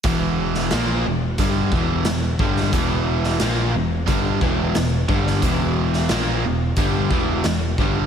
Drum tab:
HH |x---x---x---x---|x---x---x---x---|x---x---x---x---|
SD |---oo-------o--o|---oo-------o--o|---oo-------o---|
BD |o-------o-o---o-|o-------o-o---o-|o-------o-o---o-|